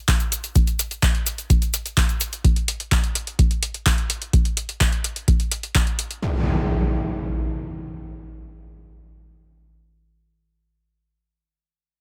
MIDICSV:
0, 0, Header, 1, 3, 480
1, 0, Start_track
1, 0, Tempo, 472441
1, 564, Time_signature, 4, 2, 24, 8
1, 12198, End_track
2, 0, Start_track
2, 0, Title_t, "Impact"
2, 0, Program_c, 0, 103
2, 6324, Note_on_c, 0, 60, 65
2, 11330, Note_off_c, 0, 60, 0
2, 12198, End_track
3, 0, Start_track
3, 0, Title_t, "Drums"
3, 84, Note_on_c, 9, 36, 115
3, 84, Note_on_c, 9, 82, 49
3, 85, Note_on_c, 9, 42, 65
3, 88, Note_on_c, 9, 39, 118
3, 186, Note_off_c, 9, 36, 0
3, 186, Note_off_c, 9, 42, 0
3, 186, Note_off_c, 9, 82, 0
3, 189, Note_off_c, 9, 39, 0
3, 200, Note_on_c, 9, 82, 39
3, 205, Note_on_c, 9, 42, 35
3, 302, Note_off_c, 9, 82, 0
3, 307, Note_off_c, 9, 42, 0
3, 325, Note_on_c, 9, 42, 87
3, 332, Note_on_c, 9, 82, 88
3, 426, Note_off_c, 9, 42, 0
3, 434, Note_off_c, 9, 82, 0
3, 444, Note_on_c, 9, 82, 40
3, 445, Note_on_c, 9, 42, 40
3, 545, Note_off_c, 9, 82, 0
3, 547, Note_off_c, 9, 42, 0
3, 562, Note_on_c, 9, 82, 53
3, 564, Note_on_c, 9, 36, 111
3, 564, Note_on_c, 9, 42, 60
3, 663, Note_off_c, 9, 82, 0
3, 666, Note_off_c, 9, 36, 0
3, 666, Note_off_c, 9, 42, 0
3, 683, Note_on_c, 9, 82, 33
3, 685, Note_on_c, 9, 42, 36
3, 785, Note_off_c, 9, 82, 0
3, 787, Note_off_c, 9, 42, 0
3, 805, Note_on_c, 9, 42, 88
3, 808, Note_on_c, 9, 82, 95
3, 907, Note_off_c, 9, 42, 0
3, 909, Note_off_c, 9, 82, 0
3, 925, Note_on_c, 9, 42, 38
3, 930, Note_on_c, 9, 82, 37
3, 1027, Note_off_c, 9, 42, 0
3, 1031, Note_off_c, 9, 82, 0
3, 1042, Note_on_c, 9, 82, 47
3, 1044, Note_on_c, 9, 36, 118
3, 1045, Note_on_c, 9, 42, 62
3, 1048, Note_on_c, 9, 39, 100
3, 1144, Note_off_c, 9, 82, 0
3, 1146, Note_off_c, 9, 36, 0
3, 1147, Note_off_c, 9, 42, 0
3, 1150, Note_off_c, 9, 39, 0
3, 1165, Note_on_c, 9, 42, 38
3, 1267, Note_off_c, 9, 42, 0
3, 1285, Note_on_c, 9, 42, 86
3, 1287, Note_on_c, 9, 82, 93
3, 1387, Note_off_c, 9, 42, 0
3, 1389, Note_off_c, 9, 82, 0
3, 1405, Note_on_c, 9, 42, 38
3, 1408, Note_on_c, 9, 82, 39
3, 1507, Note_off_c, 9, 42, 0
3, 1510, Note_off_c, 9, 82, 0
3, 1524, Note_on_c, 9, 36, 102
3, 1525, Note_on_c, 9, 42, 64
3, 1527, Note_on_c, 9, 82, 49
3, 1625, Note_off_c, 9, 36, 0
3, 1626, Note_off_c, 9, 42, 0
3, 1628, Note_off_c, 9, 82, 0
3, 1645, Note_on_c, 9, 42, 38
3, 1649, Note_on_c, 9, 82, 36
3, 1747, Note_off_c, 9, 42, 0
3, 1750, Note_off_c, 9, 82, 0
3, 1765, Note_on_c, 9, 42, 89
3, 1765, Note_on_c, 9, 82, 94
3, 1866, Note_off_c, 9, 42, 0
3, 1866, Note_off_c, 9, 82, 0
3, 1886, Note_on_c, 9, 42, 38
3, 1890, Note_on_c, 9, 82, 36
3, 1987, Note_off_c, 9, 42, 0
3, 1992, Note_off_c, 9, 82, 0
3, 2003, Note_on_c, 9, 82, 45
3, 2004, Note_on_c, 9, 36, 117
3, 2005, Note_on_c, 9, 42, 62
3, 2008, Note_on_c, 9, 39, 113
3, 2105, Note_off_c, 9, 36, 0
3, 2105, Note_off_c, 9, 82, 0
3, 2106, Note_off_c, 9, 42, 0
3, 2110, Note_off_c, 9, 39, 0
3, 2125, Note_on_c, 9, 42, 38
3, 2125, Note_on_c, 9, 82, 34
3, 2226, Note_off_c, 9, 42, 0
3, 2227, Note_off_c, 9, 82, 0
3, 2240, Note_on_c, 9, 82, 89
3, 2244, Note_on_c, 9, 42, 89
3, 2342, Note_off_c, 9, 82, 0
3, 2346, Note_off_c, 9, 42, 0
3, 2365, Note_on_c, 9, 42, 41
3, 2365, Note_on_c, 9, 82, 36
3, 2467, Note_off_c, 9, 42, 0
3, 2467, Note_off_c, 9, 82, 0
3, 2484, Note_on_c, 9, 36, 103
3, 2485, Note_on_c, 9, 42, 62
3, 2585, Note_off_c, 9, 36, 0
3, 2586, Note_off_c, 9, 42, 0
3, 2605, Note_on_c, 9, 42, 38
3, 2706, Note_off_c, 9, 42, 0
3, 2724, Note_on_c, 9, 42, 88
3, 2826, Note_off_c, 9, 42, 0
3, 2845, Note_on_c, 9, 42, 39
3, 2947, Note_off_c, 9, 42, 0
3, 2963, Note_on_c, 9, 36, 104
3, 2965, Note_on_c, 9, 42, 61
3, 2968, Note_on_c, 9, 39, 101
3, 3065, Note_off_c, 9, 36, 0
3, 3066, Note_off_c, 9, 42, 0
3, 3070, Note_off_c, 9, 39, 0
3, 3085, Note_on_c, 9, 42, 43
3, 3187, Note_off_c, 9, 42, 0
3, 3204, Note_on_c, 9, 42, 94
3, 3305, Note_off_c, 9, 42, 0
3, 3324, Note_on_c, 9, 42, 42
3, 3426, Note_off_c, 9, 42, 0
3, 3443, Note_on_c, 9, 36, 103
3, 3444, Note_on_c, 9, 42, 68
3, 3545, Note_off_c, 9, 36, 0
3, 3546, Note_off_c, 9, 42, 0
3, 3564, Note_on_c, 9, 42, 38
3, 3666, Note_off_c, 9, 42, 0
3, 3684, Note_on_c, 9, 42, 90
3, 3785, Note_off_c, 9, 42, 0
3, 3804, Note_on_c, 9, 42, 38
3, 3906, Note_off_c, 9, 42, 0
3, 3923, Note_on_c, 9, 36, 113
3, 3924, Note_on_c, 9, 42, 69
3, 3927, Note_on_c, 9, 39, 118
3, 4025, Note_off_c, 9, 36, 0
3, 4025, Note_off_c, 9, 42, 0
3, 4029, Note_off_c, 9, 39, 0
3, 4044, Note_on_c, 9, 42, 37
3, 4146, Note_off_c, 9, 42, 0
3, 4163, Note_on_c, 9, 42, 91
3, 4265, Note_off_c, 9, 42, 0
3, 4284, Note_on_c, 9, 42, 40
3, 4385, Note_off_c, 9, 42, 0
3, 4403, Note_on_c, 9, 36, 106
3, 4404, Note_on_c, 9, 42, 65
3, 4505, Note_off_c, 9, 36, 0
3, 4505, Note_off_c, 9, 42, 0
3, 4524, Note_on_c, 9, 42, 38
3, 4625, Note_off_c, 9, 42, 0
3, 4643, Note_on_c, 9, 42, 85
3, 4745, Note_off_c, 9, 42, 0
3, 4764, Note_on_c, 9, 42, 40
3, 4866, Note_off_c, 9, 42, 0
3, 4883, Note_on_c, 9, 36, 113
3, 4884, Note_on_c, 9, 42, 62
3, 4887, Note_on_c, 9, 39, 109
3, 4985, Note_off_c, 9, 36, 0
3, 4985, Note_off_c, 9, 42, 0
3, 4989, Note_off_c, 9, 39, 0
3, 5004, Note_on_c, 9, 42, 43
3, 5105, Note_off_c, 9, 42, 0
3, 5124, Note_on_c, 9, 42, 91
3, 5225, Note_off_c, 9, 42, 0
3, 5244, Note_on_c, 9, 42, 41
3, 5345, Note_off_c, 9, 42, 0
3, 5363, Note_on_c, 9, 36, 101
3, 5363, Note_on_c, 9, 42, 67
3, 5465, Note_off_c, 9, 36, 0
3, 5465, Note_off_c, 9, 42, 0
3, 5484, Note_on_c, 9, 42, 37
3, 5585, Note_off_c, 9, 42, 0
3, 5603, Note_on_c, 9, 42, 90
3, 5705, Note_off_c, 9, 42, 0
3, 5724, Note_on_c, 9, 42, 40
3, 5825, Note_off_c, 9, 42, 0
3, 5843, Note_on_c, 9, 36, 109
3, 5843, Note_on_c, 9, 42, 66
3, 5846, Note_on_c, 9, 39, 120
3, 5945, Note_off_c, 9, 36, 0
3, 5945, Note_off_c, 9, 42, 0
3, 5948, Note_off_c, 9, 39, 0
3, 5963, Note_on_c, 9, 42, 39
3, 6065, Note_off_c, 9, 42, 0
3, 6083, Note_on_c, 9, 42, 93
3, 6185, Note_off_c, 9, 42, 0
3, 6204, Note_on_c, 9, 42, 40
3, 6305, Note_off_c, 9, 42, 0
3, 12198, End_track
0, 0, End_of_file